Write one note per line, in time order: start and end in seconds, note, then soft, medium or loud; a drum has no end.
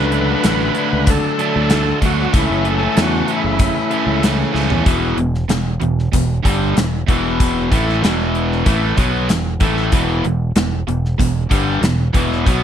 0.00 0.34 C#2 medium
0.00 0.29 D3 medium
0.00 0.11 F#3 loud
0.00 0.29 F#3 medium
0.00 0.13 A3 medium
0.00 0.29 A3 medium
0.00 0.12 D4 loud
0.00 0.27 D4 medium
0.00 1.11 B4 loud
0.12 0.42 D3 medium
0.12 0.42 F#3 medium
0.12 0.44 A3 medium
0.12 0.43 D4 medium
0.12 closed hi-hat medium
0.28 0.44 F#3 medium
0.28 0.46 A3 medium
0.28 0.46 D4 medium
0.44 0.69 A1 medium
0.44 0.75 D3 medium
0.44 0.76 F#3 medium
0.44 0.78 A3 medium
0.44 0.78 D4 loud
0.44 snare loud
0.44 closed hi-hat loud
0.75 1.24 D3 medium
0.75 0.92 F#3 medium
0.75 0.92 A3 medium
0.75 closed hi-hat medium
0.79 0.92 D4 medium
0.93 1.16 C#2 medium
0.93 muted overdriven electric guitar stroke soft
1.05 1.36 D3 medium
1.05 1.37 F#3 medium
1.05 1.37 A3 loud
1.05 1.38 D4 medium
1.05 kick loud
1.05 closed hi-hat loud
1.10 1.99 A4 medium
1.39 1.67 D3 medium
1.39 1.69 F#3 medium
1.39 1.69 A3 medium
1.39 1.70 D4 medium
1.39 closed hi-hat medium
1.56 1.91 D2 medium
1.69 2.00 D3 medium
1.69 1.84 F#3 medium
1.69 1.85 A3 loud
1.69 1.83 D4 loud
1.69 snare loud
1.69 closed hi-hat medium
1.85 muted overdriven electric guitar stroke soft
2.01 2.26 D2 medium
2.01 2.31 D3 medium
2.01 2.18 F#3 medium
2.01 2.17 A3 medium
2.01 2.15 D4 medium
2.01 kick medium
2.01 closed hi-hat medium
2.05 2.33 F#4 medium
2.16 2.33 F#3 medium
2.16 2.32 A3 medium
2.16 2.31 D4 medium
2.32 2.46 C#2 medium
2.32 4.84 A2 medium
2.32 2.81 C#3 medium
2.32 2.50 E3 medium
2.32 2.49 A3 medium
2.32 2.48 C#4 medium
2.32 kick loud
2.32 closed hi-hat medium
2.37 2.68 E4 medium
2.49 2.86 F#1 medium
2.49 2.81 E3 medium
2.49 2.80 A3 medium
2.49 2.78 C#4 medium
2.63 2.93 C#3 medium
2.63 2.94 E3 medium
2.63 2.94 A3 medium
2.63 2.95 C#4 medium
2.63 closed hi-hat medium
2.71 3.01 A4 medium
2.79 2.94 E3 medium
2.79 2.95 A3 medium
2.79 2.96 C#4 medium
2.95 3.21 E2 medium
2.95 3.26 C#3 medium
2.95 3.28 E3 medium
2.95 3.28 A3 medium
2.95 3.29 C#4 loud
2.95 snare loud
2.95 closed hi-hat medium
3.02 3.32 F#4 medium
3.28 3.76 C#3 medium
3.28 3.43 E3 medium
3.28 3.44 A3 medium
3.28 3.43 C#4 medium
3.28 closed hi-hat medium
3.36 4.23 E4 medium
3.44 3.68 F#1 medium
3.44 muted overdriven electric guitar stroke soft
3.57 3.88 C#3 medium
3.57 3.89 E3 loud
3.57 3.89 A3 medium
3.57 3.89 C#4 loud
3.57 kick loud
3.57 closed hi-hat medium
3.91 4.20 C#3 medium
3.91 4.22 E3 medium
3.91 4.23 A3 medium
3.91 4.23 C#4 medium
3.91 closed hi-hat medium
4.06 4.43 C#2 medium
4.21 4.51 C#3 medium
4.21 4.38 E3 medium
4.21 4.38 A3 loud
4.21 4.37 C#4 loud
4.21 snare loud
4.21 closed hi-hat medium
4.38 muted overdriven electric guitar stroke soft
4.52 4.69 C#2 medium
4.52 4.83 C#3 medium
4.52 4.70 E3 medium
4.52 4.68 A3 medium
4.52 4.67 C#4 medium
4.52 snare medium
4.69 4.85 E2 medium
4.69 4.84 E3 medium
4.69 4.84 A3 medium
4.69 4.84 C#4 medium
4.69 floor tom medium
4.84 5.16 E1 medium
4.84 5.16 E2 medium
4.84 5.17 B2 loud
4.84 5.17 E3 loud
4.84 kick loud
4.84 closed hi-hat medium
5.17 5.47 E1 medium
5.17 5.43 E2 medium
5.17 5.44 B2 medium
5.17 closed hi-hat medium
5.35 snare soft
5.49 5.79 E1 medium
5.49 5.75 E2 medium
5.49 5.75 B2 medium
5.49 snare loud
5.49 closed hi-hat loud
5.80 6.11 E1 medium
5.80 6.06 E2 medium
5.80 6.07 B2 medium
5.80 closed hi-hat medium
5.99 snare soft
6.12 6.43 E1 medium
6.12 6.38 E2 medium
6.12 6.38 B2 medium
6.12 kick medium
6.12 closed hi-hat loud
6.43 6.74 G1 medium
6.43 6.75 G2 medium
6.43 6.75 D3 medium
6.43 6.75 G3 medium
6.43 kick medium
6.43 closed hi-hat medium
6.75 7.06 E1 medium
6.75 7.01 E2 medium
6.75 7.01 B2 medium
6.75 snare loud
6.75 closed hi-hat medium
7.07 7.68 E1 medium
7.07 7.70 E2 medium
7.07 7.70 B2 loud
7.07 7.70 E3 medium
7.07 kick loud
7.07 closed hi-hat medium
7.40 kick loud
7.40 closed hi-hat medium
7.71 8.01 A1 medium
7.71 8.01 A2 medium
7.71 8.01 E3 medium
7.71 8.02 A3 loud
7.71 kick loud
7.71 closed hi-hat medium
7.89 snare soft
8.01 8.62 E1 medium
8.01 8.64 E2 medium
8.01 8.65 B2 medium
8.01 8.65 E3 loud
8.01 snare loud
8.01 closed hi-hat medium
8.06 8.66 B2 medium
8.35 closed hi-hat medium
8.52 snare soft
8.65 8.96 A1 medium
8.65 8.96 A2 medium
8.65 8.96 E3 medium
8.65 8.97 A3 loud
8.65 kick loud
8.65 closed hi-hat medium
8.97 9.27 B1 loud
8.97 9.28 B2 medium
8.97 9.28 F#3 medium
8.97 9.29 B3 medium
8.97 kick loud
8.97 closed hi-hat medium
9.29 9.60 E1 medium
9.29 9.55 E2 medium
9.29 9.55 B2 medium
9.29 snare loud
9.29 closed hi-hat medium
9.60 9.91 A1 medium
9.60 9.92 A2 medium
9.60 9.92 E3 loud
9.60 9.92 A3 loud
9.60 kick loud
9.60 closed hi-hat medium
9.77 snare soft
9.92 10.22 E1 medium
9.92 10.23 E2 medium
9.92 10.23 B2 medium
9.92 10.24 E3 medium
9.92 kick loud
9.92 closed hi-hat medium
10.24 10.54 E1 medium
10.24 10.50 E2 medium
10.24 10.50 B2 medium
10.24 closed hi-hat medium
10.56 10.86 E1 medium
10.56 10.81 E2 medium
10.56 10.81 B2 medium
10.56 snare loud
10.56 closed hi-hat medium
10.87 11.17 E1 medium
10.87 11.13 E2 medium
10.87 11.13 B2 medium
10.87 closed hi-hat medium
11.05 snare soft
11.18 11.49 E1 medium
11.18 11.44 E2 medium
11.18 11.45 B2 medium
11.18 kick medium
11.18 closed hi-hat loud
11.51 11.81 G1 medium
11.51 11.82 G2 medium
11.51 11.82 D3 medium
11.51 11.82 G3 loud
11.51 kick loud
11.51 closed hi-hat medium
11.81 12.12 E1 medium
11.81 12.08 E2 medium
11.81 12.09 B2 medium
11.81 snare loud
11.81 closed hi-hat medium
12.14 12.44 E1 medium
12.14 12.45 E2 medium
12.14 12.44 B2 loud
12.14 12.45 E3 loud
12.14 kick loud
12.14 closed hi-hat medium
12.32 snare soft
12.45 12.63 B1 medium
12.45 12.63 B2 medium
12.45 12.63 F#3 medium
12.45 12.63 B3 medium
12.45 kick loud
12.45 closed hi-hat medium